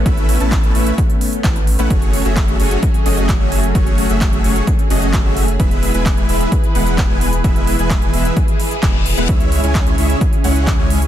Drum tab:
HH |xxoxxxoxxxoxxxox|xxoxxxoxxxoxx-ox|xxoxxxoxxxoxx-ox|xxoxxxoxxxoxx-ox|
CP |----x-------x---|----x-------x---|----x-------x---|----x-------x---|
BD |o---o---o---o---|o---o---o---o---|o---o---o---o---|o---o---o---o---|

HH |xxoxxxoxxxoxx-ox|xxoxxxoxxxoxx-ox|
CP |----x-------x---|----x-------x---|
BD |o---o---o---o---|o---o---o---o---|